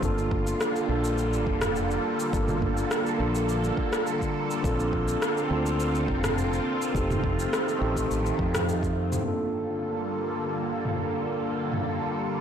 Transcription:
0.00 0.53 G1 loud
0.00 6.91 D3 medium
0.00 4.60 G3 medium
0.00 0.85 A#3 medium
0.00 6.91 A#3 medium
0.00 0.85 D4 medium
0.00 4.60 F4 medium
0.00 0.86 F4 medium
0.00 6.91 A4 medium
0.00 kick loud
0.00 shaker medium
0.05 0.87 A4 medium
0.18 shaker soft
0.31 kick loud
0.47 shaker medium
0.61 cross-stick medium
0.61 shaker soft
0.76 shaker soft
0.87 1.47 A#1 loud
0.87 2.29 A#3 medium
0.87 2.30 D4 medium
0.87 2.30 F4 medium
0.91 2.31 A4 medium
1.04 shaker medium
1.18 shaker medium
1.33 shaker soft
1.47 1.97 F1 medium
1.47 kick medium
1.61 cross-stick medium
1.61 mid tom medium
1.61 shaker medium
1.76 shaker medium
1.91 shaker soft
2.20 shaker medium
2.31 2.84 G1 medium
2.31 3.15 A#3 medium
2.31 3.16 D4 medium
2.31 3.17 F4 medium
2.31 kick loud
2.31 shaker medium
2.36 3.18 A4 medium
2.48 mid tom medium
2.48 shaker soft
2.62 kick loud
2.77 shaker medium
2.91 cross-stick medium
2.91 shaker soft
3.06 shaker soft
3.18 3.70 A#1 loud
3.18 4.60 A#3 medium
3.18 4.61 D4 medium
3.18 4.62 F4 medium
3.23 4.62 A4 medium
3.35 shaker medium
3.49 shaker medium
3.64 shaker soft
3.77 kick medium
3.93 cross-stick medium
3.93 shaker medium
4.07 shaker medium
4.21 kick medium
4.21 shaker soft
4.51 shaker medium
4.62 5.15 A#1 loud
4.62 5.46 C4 medium
4.62 9.22 C4 medium
4.62 5.47 D4 medium
4.62 9.22 F4 medium
4.62 5.48 F4 medium
4.62 kick loud
4.62 shaker soft
4.67 5.49 A4 medium
4.80 shaker soft
4.93 kick medium
5.08 shaker medium
5.22 cross-stick medium
5.22 shaker soft
5.37 shaker soft
5.48 6.10 D2 loud
5.48 6.90 C4 medium
5.48 6.91 D4 medium
5.48 6.92 F4 medium
5.53 6.93 A4 medium
5.66 shaker medium
5.80 shaker medium
5.95 shaker soft
6.08 6.59 F1 medium
6.08 kick medium
6.24 cross-stick medium
6.24 mid tom medium
6.24 shaker medium
6.38 shaker medium
6.53 shaker soft
6.82 shaker medium
6.92 7.45 F1 loud
6.92 9.23 D#3 medium
6.92 9.23 F3 medium
6.92 9.23 A3 medium
6.92 7.77 C4 medium
6.92 7.78 D#4 medium
6.92 7.79 G4 medium
6.92 kick loud
6.92 shaker soft
6.97 7.79 A4 medium
7.11 mid tom medium
7.11 shaker soft
7.24 kick medium
7.39 shaker medium
7.53 cross-stick medium
7.53 shaker medium
7.68 shaker soft
7.79 8.10 A1 loud
7.79 9.21 C4 medium
7.79 9.22 D#4 medium
7.79 9.23 G4 medium
7.84 9.24 A4 medium
7.96 kick medium
7.96 shaker medium
8.11 8.30 A1 medium
8.11 shaker soft
8.26 shaker soft
8.39 9.18 F2 medium
8.39 kick medium
8.55 cross-stick medium
8.55 mid tom medium
8.55 shaker medium
8.69 shaker medium
8.83 kick medium
8.83 shaker soft
9.12 mid tom medium
9.12 shaker medium
9.23 12.41 G2 medium
9.23 12.41 D3 medium
9.23 12.41 G3 medium
9.23 12.41 A#3 medium
9.23 12.41 D4 medium
9.23 12.41 F4 medium
9.23 12.41 A4 medium
9.28 12.41 A4 medium
10.86 mid tom medium
11.72 mid tom soft

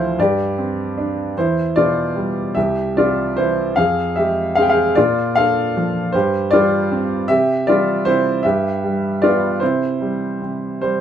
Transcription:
0.00 0.15 D2 medium
0.00 0.16 D3 soft
0.00 0.17 F3 medium
0.00 0.16 E4 medium
0.00 0.20 A4 medium
0.00 0.16 C5 medium
0.00 0.19 F5 medium
0.18 1.33 G2 medium
0.18 1.34 G4 medium
0.18 1.40 D5 medium
0.58 1.34 C4 soft
0.98 1.35 D4 medium
1.37 2.53 E2 medium
1.37 1.75 E4 medium
1.37 1.74 C5 medium
1.76 2.54 B2 soft
1.76 2.52 F4 medium
1.76 2.58 D5 medium
2.16 2.54 G3 soft
2.55 3.73 C2 medium
2.55 2.93 G4 medium
2.55 2.96 E5 medium
2.96 3.74 C3 soft
2.96 3.34 F4 medium
2.96 3.34 D5 medium
3.36 3.75 E3 soft
3.36 3.75 E4 medium
3.36 3.78 C5 medium
3.76 4.93 F2 medium
3.76 4.15 G#4 medium
3.76 4.18 F5 medium
4.16 4.94 G#3 soft
4.16 4.54 G4 soft
4.16 4.57 E5 medium
4.55 4.96 C4 medium
4.55 4.63 G#4 medium
4.55 4.63 F5 medium
4.62 4.70 G5 medium
4.69 4.95 G#4 medium
4.69 4.97 F5 medium
4.95 6.11 A#2 medium
4.95 5.34 F4 medium
4.95 5.36 D5 medium
5.35 6.12 D4 soft
5.35 6.11 A4 medium
5.35 6.16 F5 medium
5.77 6.14 F3 medium
6.12 7.26 G2 medium
6.12 6.50 G4 medium
6.12 6.53 C5 medium
6.51 7.27 G3 soft
6.51 7.25 F4 medium
6.51 7.30 D5 medium
6.92 7.28 C4 medium
7.28 8.04 C3 medium
7.28 7.65 G4 medium
7.28 7.68 E5 medium
7.67 8.42 G3 soft
7.67 8.04 F4 medium
7.67 8.06 D5 medium
8.05 8.43 C3 medium
8.05 8.42 E4 medium
8.05 8.45 C5 medium
8.43 9.58 G2 medium
8.43 9.18 G4 medium
8.43 9.23 E5 medium
8.84 9.59 G3 soft
9.22 9.60 B3 medium
9.22 9.59 F4 medium
9.22 9.58 D5 medium
9.60 10.40 C3 medium
9.60 11.01 E4 soft
9.60 10.80 C5 medium
10.01 10.80 G3 soft
10.42 11.01 C3 medium
10.81 11.01 G3 soft
10.81 11.01 C5 medium

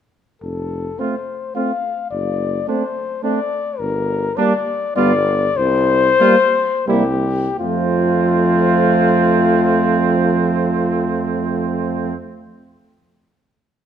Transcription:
0.42 0.90 F1 soft
0.42 1.01 A4 soft
0.99 1.15 A3 soft
0.99 1.15 C4 soft
0.99 1.15 F4 soft
0.99 1.55 C5 soft
1.55 1.71 A3 soft
1.55 1.72 C4 soft
1.55 1.71 F4 soft
1.55 2.10 F5 medium
2.11 2.59 F#1 soft
2.11 2.67 D5 medium
2.67 2.83 A3 soft
2.67 2.83 C4 soft
2.67 2.84 D4 soft
2.67 3.23 C5 medium
3.23 3.39 A3 soft
3.23 3.39 C4 soft
3.23 3.39 D4 soft
3.23 3.81 D5 medium
3.79 4.28 G1 medium
3.79 4.39 A#4 medium
4.37 4.54 G3 medium
4.37 4.53 A#3 medium
4.37 4.53 D4 medium
4.37 4.95 D5 medium
4.96 5.47 G1 medium
4.96 5.12 G3 medium
4.96 5.12 B3 medium
4.96 5.12 F4 medium
4.96 5.58 D5 medium
5.57 6.10 C2 medium
5.57 6.88 C5 loud
6.19 6.36 G3 medium
6.19 6.37 A#3 medium
6.19 6.35 F4 medium
6.87 7.48 C2 medium
6.87 7.03 G3 medium
6.87 7.04 A#3 medium
6.87 7.04 E4 medium
6.87 7.58 G4 medium
7.59 12.14 F2 medium
7.59 12.14 F3 medium
7.59 12.14 A3 medium
7.59 12.14 C4 medium
7.59 12.14 F4 medium

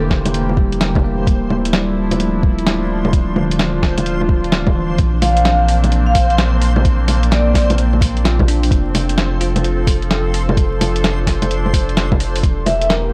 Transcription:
0.00 1.25 E1 medium
0.00 1.21 D3 medium
0.00 1.23 E3 medium
0.00 1.05 A#3 medium
0.00 1.23 A#3 medium
0.00 1.23 G4 medium
0.00 12.41 C5 medium
0.10 kick medium
0.10 snare medium
0.26 closed hi-hat medium
0.26 low bongo medium
0.34 closed hi-hat medium
0.49 low bongo soft
0.57 1.46 G3 medium
0.57 kick loud
0.72 closed hi-hat soft
0.81 snare loud
0.81 closed hi-hat medium
0.95 kick loud
0.95 low bongo medium
1.05 1.47 A#3 medium
1.27 4.97 D1 medium
1.27 4.95 F3 medium
1.27 8.67 D4 medium
1.27 3.11 E4 medium
1.27 kick loud
1.27 closed hi-hat medium
1.50 low bongo medium
1.65 closed hi-hat medium
1.73 3.07 G3 medium
1.73 snare loud
1.73 closed hi-hat medium
2.11 closed hi-hat medium
2.11 low bongo medium
2.20 3.53 A3 medium
2.20 closed hi-hat medium
2.43 kick loud
2.59 closed hi-hat soft
2.67 snare loud
2.67 closed hi-hat medium
3.05 low bongo medium
3.13 4.97 F4 medium
3.13 kick loud
3.13 closed hi-hat medium
3.36 4.69 D3 medium
3.36 low bongo medium
3.51 closed hi-hat medium
3.59 snare loud
3.59 closed hi-hat medium
3.83 kick medium
3.83 snare medium
3.98 closed hi-hat medium
3.98 low bongo medium
4.06 closed hi-hat medium
4.21 low bongo soft
4.29 kick loud
4.44 closed hi-hat soft
4.52 snare loud
4.52 closed hi-hat medium
4.67 kick loud
4.67 low bongo medium
4.76 5.19 E3 medium
4.98 8.69 A#1 medium
4.98 8.67 A#3 medium
4.98 10.53 C4 medium
4.98 kick loud
4.98 closed hi-hat medium
5.22 5.44 F5 medium
5.22 open hi-hat medium
5.22 low bongo medium
5.37 closed hi-hat medium
5.45 6.79 C4 medium
5.45 5.70 F5 medium
5.45 snare loud
5.45 closed hi-hat medium
5.69 open hi-hat medium
5.84 closed hi-hat medium
5.84 low bongo medium
5.92 closed hi-hat soft
6.07 6.12 F5 medium
6.15 6.25 F5 medium
6.15 kick loud
6.15 open hi-hat medium
6.30 closed hi-hat soft
6.38 snare loud
6.38 closed hi-hat medium
6.62 open hi-hat medium
6.76 low bongo medium
6.85 kick loud
6.85 closed hi-hat medium
7.08 open hi-hat medium
7.08 low bongo medium
7.23 closed hi-hat medium
7.31 8.65 A#3 medium
7.31 7.70 D5 medium
7.31 snare loud
7.31 closed hi-hat medium
7.55 kick medium
7.55 snare medium
7.55 open hi-hat medium
7.70 closed hi-hat medium
7.70 low bongo medium
7.78 closed hi-hat soft
7.93 low bongo soft
8.01 kick loud
8.01 open hi-hat medium
8.17 closed hi-hat soft
8.24 8.90 F4 medium
8.24 snare medium
8.24 closed hi-hat medium
8.39 kick loud
8.39 low bongo medium
8.48 8.91 D4 medium
8.48 open hi-hat medium
8.63 open hi-hat soft
8.71 12.41 F1 medium
8.71 12.40 F3 medium
8.71 12.40 A4 medium
8.71 kick loud
8.71 closed hi-hat medium
8.95 open hi-hat medium
8.95 low bongo medium
9.09 closed hi-hat medium
9.18 snare loud
9.18 closed hi-hat medium
9.41 10.74 F4 medium
9.41 open hi-hat medium
9.56 closed hi-hat medium
9.56 low bongo medium
9.64 closed hi-hat medium
9.87 11.21 A4 medium
9.87 kick loud
9.87 open hi-hat medium
10.02 closed hi-hat soft
10.11 snare medium
10.11 closed hi-hat medium
10.34 open hi-hat medium
10.49 low bongo medium
10.56 12.41 D4 medium
10.56 kick loud
10.56 closed hi-hat medium
10.81 open hi-hat medium
10.81 low bongo medium
10.96 closed hi-hat medium
11.04 snare loud
11.04 closed hi-hat medium
11.27 kick medium
11.27 snare medium
11.27 open hi-hat medium
11.42 closed hi-hat medium
11.42 low bongo medium
11.51 closed hi-hat medium
11.66 low bongo soft
11.73 kick medium
11.73 open hi-hat medium
11.89 closed hi-hat soft
11.97 snare loud
11.97 closed hi-hat medium
12.12 kick loud
12.12 low bongo medium
12.20 open hi-hat medium
12.36 open hi-hat soft
12.43 13.13 E1 medium
12.43 13.13 E3 medium
12.43 13.13 A#3 medium
12.43 13.13 G4 medium
12.43 kick loud
12.43 closed hi-hat medium
12.66 12.91 E5 medium
12.66 open hi-hat medium
12.66 low bongo medium
12.82 closed hi-hat medium
12.90 13.13 A#4 medium
12.90 snare loud
12.90 closed hi-hat medium

